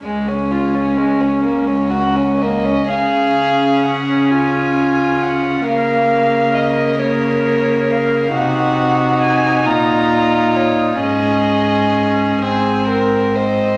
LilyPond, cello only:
\new Staff \with { instrumentName = "Cello" } { \clef bass \time 6/8 \key des \major \tempo 4. = 43 des,4. des,4. | des2. | des2. | c4. bes,4. |
aes,4. aes,4. | }